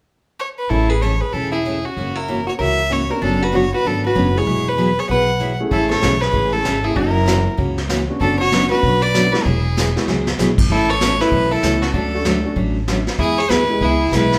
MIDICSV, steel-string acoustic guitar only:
0, 0, Header, 1, 2, 480
1, 0, Start_track
1, 0, Key_signature, 3, "major"
1, 0, Tempo, 312012
1, 1092, Time_signature, 4, 2, 24, 8
1, 22133, End_track
2, 0, Start_track
2, 0, Title_t, "Steel-string acoustic guitar"
2, 0, Program_c, 0, 25
2, 1081, Note_on_c, 0, 49, 52
2, 1082, Note_on_c, 0, 52, 57
2, 1091, Note_on_c, 0, 57, 52
2, 1093, Note_on_c, 0, 61, 54
2, 1097, Note_on_c, 0, 68, 56
2, 1403, Note_off_c, 0, 49, 0
2, 1403, Note_off_c, 0, 52, 0
2, 1408, Note_off_c, 0, 57, 0
2, 1409, Note_off_c, 0, 61, 0
2, 1411, Note_off_c, 0, 68, 0
2, 1577, Note_on_c, 0, 49, 64
2, 1577, Note_on_c, 0, 52, 65
2, 1580, Note_on_c, 0, 57, 64
2, 1582, Note_on_c, 0, 61, 72
2, 1582, Note_on_c, 0, 68, 64
2, 1748, Note_off_c, 0, 49, 0
2, 1748, Note_off_c, 0, 52, 0
2, 1750, Note_off_c, 0, 57, 0
2, 1751, Note_off_c, 0, 61, 0
2, 1751, Note_off_c, 0, 68, 0
2, 2061, Note_on_c, 0, 49, 48
2, 2064, Note_on_c, 0, 52, 53
2, 2069, Note_on_c, 0, 57, 54
2, 2070, Note_on_c, 0, 61, 57
2, 2074, Note_on_c, 0, 68, 60
2, 2375, Note_off_c, 0, 49, 0
2, 2376, Note_off_c, 0, 52, 0
2, 2379, Note_off_c, 0, 57, 0
2, 2379, Note_off_c, 0, 61, 0
2, 2381, Note_off_c, 0, 68, 0
2, 2540, Note_on_c, 0, 49, 62
2, 2544, Note_on_c, 0, 52, 67
2, 2551, Note_on_c, 0, 57, 71
2, 2553, Note_on_c, 0, 61, 69
2, 2557, Note_on_c, 0, 68, 69
2, 2712, Note_off_c, 0, 49, 0
2, 2714, Note_off_c, 0, 52, 0
2, 2718, Note_off_c, 0, 57, 0
2, 2718, Note_off_c, 0, 61, 0
2, 2720, Note_off_c, 0, 68, 0
2, 3034, Note_on_c, 0, 49, 52
2, 3036, Note_on_c, 0, 52, 50
2, 3047, Note_on_c, 0, 61, 54
2, 3049, Note_on_c, 0, 58, 54
2, 3052, Note_on_c, 0, 66, 56
2, 3343, Note_off_c, 0, 49, 0
2, 3344, Note_off_c, 0, 52, 0
2, 3349, Note_off_c, 0, 61, 0
2, 3350, Note_off_c, 0, 58, 0
2, 3352, Note_off_c, 0, 66, 0
2, 3510, Note_on_c, 0, 49, 67
2, 3512, Note_on_c, 0, 52, 74
2, 3520, Note_on_c, 0, 61, 72
2, 3522, Note_on_c, 0, 58, 65
2, 3527, Note_on_c, 0, 66, 72
2, 3679, Note_off_c, 0, 49, 0
2, 3680, Note_off_c, 0, 52, 0
2, 3684, Note_off_c, 0, 61, 0
2, 3685, Note_off_c, 0, 58, 0
2, 3687, Note_off_c, 0, 66, 0
2, 3980, Note_on_c, 0, 49, 60
2, 3986, Note_on_c, 0, 52, 56
2, 3988, Note_on_c, 0, 58, 54
2, 3989, Note_on_c, 0, 61, 55
2, 3996, Note_on_c, 0, 66, 55
2, 4297, Note_off_c, 0, 49, 0
2, 4300, Note_off_c, 0, 52, 0
2, 4301, Note_off_c, 0, 58, 0
2, 4302, Note_off_c, 0, 61, 0
2, 4305, Note_off_c, 0, 66, 0
2, 4455, Note_on_c, 0, 49, 63
2, 4464, Note_on_c, 0, 52, 78
2, 4464, Note_on_c, 0, 58, 67
2, 4467, Note_on_c, 0, 61, 77
2, 4470, Note_on_c, 0, 66, 68
2, 4632, Note_off_c, 0, 49, 0
2, 4637, Note_off_c, 0, 52, 0
2, 4637, Note_off_c, 0, 58, 0
2, 4638, Note_off_c, 0, 61, 0
2, 4640, Note_off_c, 0, 66, 0
2, 4941, Note_on_c, 0, 50, 58
2, 4945, Note_on_c, 0, 59, 55
2, 4948, Note_on_c, 0, 54, 58
2, 4954, Note_on_c, 0, 61, 61
2, 4956, Note_on_c, 0, 66, 59
2, 5259, Note_off_c, 0, 50, 0
2, 5261, Note_off_c, 0, 59, 0
2, 5262, Note_off_c, 0, 54, 0
2, 5265, Note_off_c, 0, 61, 0
2, 5266, Note_off_c, 0, 66, 0
2, 5416, Note_on_c, 0, 50, 74
2, 5418, Note_on_c, 0, 59, 64
2, 5421, Note_on_c, 0, 54, 68
2, 5429, Note_on_c, 0, 61, 70
2, 5433, Note_on_c, 0, 66, 76
2, 5594, Note_off_c, 0, 50, 0
2, 5595, Note_off_c, 0, 59, 0
2, 5596, Note_off_c, 0, 54, 0
2, 5600, Note_off_c, 0, 61, 0
2, 5602, Note_off_c, 0, 66, 0
2, 5913, Note_on_c, 0, 50, 51
2, 5919, Note_on_c, 0, 54, 50
2, 5922, Note_on_c, 0, 59, 53
2, 5929, Note_on_c, 0, 61, 58
2, 5932, Note_on_c, 0, 66, 61
2, 6225, Note_off_c, 0, 50, 0
2, 6229, Note_off_c, 0, 54, 0
2, 6230, Note_off_c, 0, 59, 0
2, 6234, Note_off_c, 0, 61, 0
2, 6235, Note_off_c, 0, 66, 0
2, 6379, Note_on_c, 0, 50, 68
2, 6391, Note_on_c, 0, 54, 73
2, 6393, Note_on_c, 0, 59, 68
2, 6394, Note_on_c, 0, 61, 74
2, 6400, Note_on_c, 0, 66, 70
2, 6556, Note_off_c, 0, 50, 0
2, 6562, Note_off_c, 0, 54, 0
2, 6563, Note_off_c, 0, 59, 0
2, 6564, Note_off_c, 0, 61, 0
2, 6567, Note_off_c, 0, 66, 0
2, 6856, Note_on_c, 0, 52, 54
2, 6863, Note_on_c, 0, 54, 58
2, 6866, Note_on_c, 0, 64, 61
2, 6873, Note_on_c, 0, 59, 58
2, 6879, Note_on_c, 0, 68, 62
2, 7178, Note_off_c, 0, 52, 0
2, 7181, Note_off_c, 0, 54, 0
2, 7183, Note_off_c, 0, 64, 0
2, 7186, Note_off_c, 0, 59, 0
2, 7189, Note_off_c, 0, 68, 0
2, 7340, Note_on_c, 0, 52, 64
2, 7352, Note_on_c, 0, 54, 72
2, 7352, Note_on_c, 0, 59, 67
2, 7359, Note_on_c, 0, 68, 77
2, 7361, Note_on_c, 0, 64, 77
2, 7517, Note_off_c, 0, 52, 0
2, 7523, Note_off_c, 0, 54, 0
2, 7523, Note_off_c, 0, 59, 0
2, 7526, Note_off_c, 0, 68, 0
2, 7528, Note_off_c, 0, 64, 0
2, 7816, Note_on_c, 0, 52, 51
2, 7828, Note_on_c, 0, 54, 53
2, 7829, Note_on_c, 0, 59, 52
2, 7832, Note_on_c, 0, 64, 58
2, 7837, Note_on_c, 0, 68, 66
2, 8138, Note_off_c, 0, 52, 0
2, 8144, Note_off_c, 0, 54, 0
2, 8144, Note_off_c, 0, 59, 0
2, 8146, Note_off_c, 0, 64, 0
2, 8148, Note_off_c, 0, 68, 0
2, 8303, Note_on_c, 0, 52, 69
2, 8306, Note_on_c, 0, 54, 68
2, 8313, Note_on_c, 0, 59, 67
2, 8314, Note_on_c, 0, 64, 74
2, 8314, Note_on_c, 0, 68, 75
2, 8478, Note_off_c, 0, 52, 0
2, 8480, Note_off_c, 0, 54, 0
2, 8483, Note_off_c, 0, 59, 0
2, 8484, Note_off_c, 0, 64, 0
2, 8484, Note_off_c, 0, 68, 0
2, 8781, Note_on_c, 0, 49, 61
2, 8790, Note_on_c, 0, 68, 56
2, 8791, Note_on_c, 0, 57, 58
2, 8792, Note_on_c, 0, 52, 52
2, 8795, Note_on_c, 0, 61, 61
2, 9100, Note_off_c, 0, 49, 0
2, 9105, Note_off_c, 0, 57, 0
2, 9105, Note_off_c, 0, 68, 0
2, 9106, Note_off_c, 0, 52, 0
2, 9107, Note_off_c, 0, 61, 0
2, 9252, Note_on_c, 0, 49, 71
2, 9255, Note_on_c, 0, 52, 65
2, 9258, Note_on_c, 0, 57, 75
2, 9258, Note_on_c, 0, 61, 69
2, 9268, Note_on_c, 0, 68, 80
2, 9433, Note_off_c, 0, 49, 0
2, 9434, Note_off_c, 0, 52, 0
2, 9436, Note_off_c, 0, 57, 0
2, 9436, Note_off_c, 0, 61, 0
2, 9441, Note_off_c, 0, 68, 0
2, 9725, Note_on_c, 0, 49, 58
2, 9732, Note_on_c, 0, 52, 57
2, 9734, Note_on_c, 0, 57, 57
2, 9739, Note_on_c, 0, 61, 60
2, 9740, Note_on_c, 0, 68, 58
2, 10051, Note_off_c, 0, 49, 0
2, 10055, Note_off_c, 0, 52, 0
2, 10056, Note_off_c, 0, 57, 0
2, 10059, Note_off_c, 0, 61, 0
2, 10059, Note_off_c, 0, 68, 0
2, 10223, Note_on_c, 0, 49, 68
2, 10231, Note_on_c, 0, 52, 69
2, 10233, Note_on_c, 0, 57, 77
2, 10233, Note_on_c, 0, 61, 78
2, 10243, Note_on_c, 0, 68, 76
2, 10398, Note_off_c, 0, 49, 0
2, 10402, Note_off_c, 0, 52, 0
2, 10403, Note_off_c, 0, 57, 0
2, 10403, Note_off_c, 0, 61, 0
2, 10408, Note_off_c, 0, 68, 0
2, 10695, Note_on_c, 0, 49, 54
2, 10700, Note_on_c, 0, 52, 53
2, 10701, Note_on_c, 0, 61, 59
2, 10705, Note_on_c, 0, 58, 55
2, 10709, Note_on_c, 0, 66, 59
2, 11016, Note_off_c, 0, 49, 0
2, 11019, Note_off_c, 0, 52, 0
2, 11019, Note_off_c, 0, 61, 0
2, 11021, Note_off_c, 0, 58, 0
2, 11023, Note_off_c, 0, 66, 0
2, 11164, Note_on_c, 0, 49, 66
2, 11166, Note_on_c, 0, 52, 66
2, 11171, Note_on_c, 0, 58, 67
2, 11180, Note_on_c, 0, 61, 74
2, 11182, Note_on_c, 0, 66, 70
2, 11348, Note_off_c, 0, 49, 0
2, 11349, Note_off_c, 0, 52, 0
2, 11351, Note_off_c, 0, 58, 0
2, 11356, Note_off_c, 0, 61, 0
2, 11357, Note_off_c, 0, 66, 0
2, 11650, Note_on_c, 0, 52, 50
2, 11652, Note_on_c, 0, 49, 50
2, 11652, Note_on_c, 0, 58, 53
2, 11654, Note_on_c, 0, 61, 63
2, 11663, Note_on_c, 0, 66, 62
2, 11973, Note_off_c, 0, 52, 0
2, 11974, Note_off_c, 0, 49, 0
2, 11974, Note_off_c, 0, 58, 0
2, 11975, Note_off_c, 0, 61, 0
2, 11980, Note_off_c, 0, 66, 0
2, 12147, Note_on_c, 0, 49, 80
2, 12149, Note_on_c, 0, 52, 77
2, 12156, Note_on_c, 0, 58, 73
2, 12161, Note_on_c, 0, 61, 78
2, 12161, Note_on_c, 0, 66, 82
2, 12318, Note_off_c, 0, 49, 0
2, 12319, Note_off_c, 0, 52, 0
2, 12323, Note_off_c, 0, 58, 0
2, 12326, Note_off_c, 0, 61, 0
2, 12326, Note_off_c, 0, 66, 0
2, 12627, Note_on_c, 0, 50, 58
2, 12633, Note_on_c, 0, 59, 59
2, 12636, Note_on_c, 0, 54, 54
2, 12638, Note_on_c, 0, 66, 60
2, 12639, Note_on_c, 0, 61, 56
2, 12940, Note_off_c, 0, 50, 0
2, 12944, Note_off_c, 0, 59, 0
2, 12945, Note_off_c, 0, 54, 0
2, 12946, Note_off_c, 0, 61, 0
2, 12946, Note_off_c, 0, 66, 0
2, 13107, Note_on_c, 0, 50, 74
2, 13118, Note_on_c, 0, 54, 72
2, 13120, Note_on_c, 0, 59, 78
2, 13122, Note_on_c, 0, 61, 73
2, 13127, Note_on_c, 0, 66, 74
2, 13278, Note_off_c, 0, 50, 0
2, 13283, Note_off_c, 0, 54, 0
2, 13284, Note_off_c, 0, 59, 0
2, 13285, Note_off_c, 0, 61, 0
2, 13288, Note_off_c, 0, 66, 0
2, 13583, Note_on_c, 0, 50, 51
2, 13587, Note_on_c, 0, 54, 60
2, 13593, Note_on_c, 0, 59, 56
2, 13597, Note_on_c, 0, 61, 53
2, 13606, Note_on_c, 0, 66, 62
2, 13897, Note_off_c, 0, 50, 0
2, 13899, Note_off_c, 0, 54, 0
2, 13902, Note_off_c, 0, 59, 0
2, 13905, Note_off_c, 0, 61, 0
2, 13909, Note_off_c, 0, 66, 0
2, 14057, Note_on_c, 0, 50, 61
2, 14063, Note_on_c, 0, 54, 71
2, 14065, Note_on_c, 0, 59, 69
2, 14069, Note_on_c, 0, 61, 75
2, 14072, Note_on_c, 0, 66, 73
2, 14232, Note_off_c, 0, 50, 0
2, 14235, Note_off_c, 0, 54, 0
2, 14235, Note_off_c, 0, 59, 0
2, 14237, Note_off_c, 0, 61, 0
2, 14239, Note_off_c, 0, 66, 0
2, 14554, Note_on_c, 0, 54, 56
2, 14556, Note_on_c, 0, 52, 57
2, 14558, Note_on_c, 0, 64, 55
2, 14563, Note_on_c, 0, 59, 55
2, 14570, Note_on_c, 0, 68, 60
2, 14862, Note_off_c, 0, 54, 0
2, 14863, Note_off_c, 0, 52, 0
2, 14864, Note_off_c, 0, 64, 0
2, 14866, Note_off_c, 0, 59, 0
2, 14870, Note_off_c, 0, 68, 0
2, 15030, Note_on_c, 0, 54, 76
2, 15031, Note_on_c, 0, 52, 69
2, 15038, Note_on_c, 0, 59, 65
2, 15045, Note_on_c, 0, 64, 67
2, 15045, Note_on_c, 0, 68, 77
2, 15197, Note_off_c, 0, 52, 0
2, 15197, Note_off_c, 0, 54, 0
2, 15201, Note_off_c, 0, 59, 0
2, 15205, Note_off_c, 0, 64, 0
2, 15205, Note_off_c, 0, 68, 0
2, 15505, Note_on_c, 0, 54, 48
2, 15512, Note_on_c, 0, 52, 54
2, 15514, Note_on_c, 0, 64, 52
2, 15515, Note_on_c, 0, 59, 58
2, 15528, Note_on_c, 0, 68, 59
2, 15816, Note_off_c, 0, 54, 0
2, 15820, Note_off_c, 0, 52, 0
2, 15821, Note_off_c, 0, 59, 0
2, 15821, Note_off_c, 0, 64, 0
2, 15828, Note_off_c, 0, 68, 0
2, 15975, Note_on_c, 0, 52, 66
2, 15978, Note_on_c, 0, 54, 67
2, 15986, Note_on_c, 0, 59, 79
2, 15988, Note_on_c, 0, 64, 68
2, 15996, Note_on_c, 0, 68, 80
2, 16148, Note_off_c, 0, 52, 0
2, 16150, Note_off_c, 0, 54, 0
2, 16154, Note_off_c, 0, 59, 0
2, 16155, Note_off_c, 0, 64, 0
2, 16159, Note_off_c, 0, 68, 0
2, 16457, Note_on_c, 0, 47, 50
2, 16458, Note_on_c, 0, 52, 53
2, 16462, Note_on_c, 0, 57, 54
2, 16462, Note_on_c, 0, 61, 51
2, 16467, Note_on_c, 0, 69, 58
2, 16771, Note_off_c, 0, 47, 0
2, 16772, Note_off_c, 0, 52, 0
2, 16774, Note_off_c, 0, 57, 0
2, 16774, Note_off_c, 0, 61, 0
2, 16776, Note_off_c, 0, 69, 0
2, 16938, Note_on_c, 0, 52, 66
2, 16941, Note_on_c, 0, 47, 65
2, 16951, Note_on_c, 0, 57, 78
2, 16954, Note_on_c, 0, 61, 70
2, 16960, Note_on_c, 0, 69, 73
2, 17109, Note_off_c, 0, 52, 0
2, 17110, Note_off_c, 0, 47, 0
2, 17115, Note_off_c, 0, 57, 0
2, 17117, Note_off_c, 0, 61, 0
2, 17119, Note_off_c, 0, 69, 0
2, 17410, Note_on_c, 0, 47, 60
2, 17413, Note_on_c, 0, 52, 55
2, 17419, Note_on_c, 0, 57, 55
2, 17423, Note_on_c, 0, 61, 54
2, 17423, Note_on_c, 0, 69, 66
2, 17727, Note_off_c, 0, 47, 0
2, 17728, Note_off_c, 0, 52, 0
2, 17731, Note_off_c, 0, 57, 0
2, 17733, Note_off_c, 0, 61, 0
2, 17733, Note_off_c, 0, 69, 0
2, 17886, Note_on_c, 0, 47, 75
2, 17891, Note_on_c, 0, 52, 68
2, 17894, Note_on_c, 0, 57, 69
2, 17897, Note_on_c, 0, 61, 73
2, 17905, Note_on_c, 0, 69, 72
2, 18062, Note_off_c, 0, 47, 0
2, 18064, Note_off_c, 0, 52, 0
2, 18066, Note_off_c, 0, 57, 0
2, 18067, Note_off_c, 0, 61, 0
2, 18071, Note_off_c, 0, 69, 0
2, 18360, Note_on_c, 0, 50, 59
2, 18364, Note_on_c, 0, 54, 52
2, 18369, Note_on_c, 0, 61, 60
2, 18376, Note_on_c, 0, 57, 58
2, 18377, Note_on_c, 0, 66, 59
2, 18681, Note_off_c, 0, 50, 0
2, 18683, Note_off_c, 0, 54, 0
2, 18685, Note_off_c, 0, 61, 0
2, 18689, Note_off_c, 0, 57, 0
2, 18689, Note_off_c, 0, 66, 0
2, 18839, Note_on_c, 0, 50, 70
2, 18847, Note_on_c, 0, 54, 68
2, 18848, Note_on_c, 0, 57, 77
2, 18855, Note_on_c, 0, 66, 74
2, 18856, Note_on_c, 0, 61, 65
2, 19017, Note_off_c, 0, 50, 0
2, 19021, Note_off_c, 0, 54, 0
2, 19022, Note_off_c, 0, 57, 0
2, 19025, Note_off_c, 0, 66, 0
2, 19026, Note_off_c, 0, 61, 0
2, 19318, Note_on_c, 0, 50, 54
2, 19320, Note_on_c, 0, 54, 55
2, 19321, Note_on_c, 0, 57, 54
2, 19326, Note_on_c, 0, 66, 55
2, 19330, Note_on_c, 0, 61, 58
2, 19639, Note_off_c, 0, 50, 0
2, 19640, Note_off_c, 0, 54, 0
2, 19640, Note_off_c, 0, 57, 0
2, 19643, Note_off_c, 0, 66, 0
2, 19644, Note_off_c, 0, 61, 0
2, 19812, Note_on_c, 0, 54, 63
2, 19816, Note_on_c, 0, 50, 63
2, 19817, Note_on_c, 0, 57, 73
2, 19823, Note_on_c, 0, 66, 75
2, 19825, Note_on_c, 0, 61, 78
2, 19983, Note_off_c, 0, 54, 0
2, 19985, Note_off_c, 0, 50, 0
2, 19986, Note_off_c, 0, 57, 0
2, 19989, Note_off_c, 0, 61, 0
2, 19989, Note_off_c, 0, 66, 0
2, 20286, Note_on_c, 0, 52, 50
2, 20287, Note_on_c, 0, 59, 57
2, 20291, Note_on_c, 0, 56, 58
2, 20296, Note_on_c, 0, 64, 57
2, 20298, Note_on_c, 0, 68, 58
2, 20602, Note_off_c, 0, 52, 0
2, 20602, Note_off_c, 0, 59, 0
2, 20604, Note_off_c, 0, 56, 0
2, 20607, Note_off_c, 0, 64, 0
2, 20608, Note_off_c, 0, 68, 0
2, 20751, Note_on_c, 0, 52, 67
2, 20752, Note_on_c, 0, 56, 68
2, 20758, Note_on_c, 0, 59, 76
2, 20767, Note_on_c, 0, 64, 75
2, 20769, Note_on_c, 0, 68, 73
2, 20932, Note_off_c, 0, 52, 0
2, 20932, Note_off_c, 0, 56, 0
2, 20935, Note_off_c, 0, 59, 0
2, 20940, Note_off_c, 0, 64, 0
2, 20941, Note_off_c, 0, 68, 0
2, 21234, Note_on_c, 0, 56, 53
2, 21240, Note_on_c, 0, 59, 55
2, 21242, Note_on_c, 0, 52, 56
2, 21245, Note_on_c, 0, 68, 59
2, 21246, Note_on_c, 0, 64, 62
2, 21555, Note_off_c, 0, 56, 0
2, 21558, Note_off_c, 0, 59, 0
2, 21559, Note_off_c, 0, 52, 0
2, 21561, Note_off_c, 0, 64, 0
2, 21561, Note_off_c, 0, 68, 0
2, 21719, Note_on_c, 0, 52, 73
2, 21719, Note_on_c, 0, 56, 73
2, 21722, Note_on_c, 0, 59, 77
2, 21735, Note_on_c, 0, 64, 79
2, 21738, Note_on_c, 0, 68, 83
2, 21895, Note_off_c, 0, 52, 0
2, 21895, Note_off_c, 0, 56, 0
2, 21896, Note_off_c, 0, 59, 0
2, 21903, Note_off_c, 0, 64, 0
2, 21904, Note_off_c, 0, 68, 0
2, 22133, End_track
0, 0, End_of_file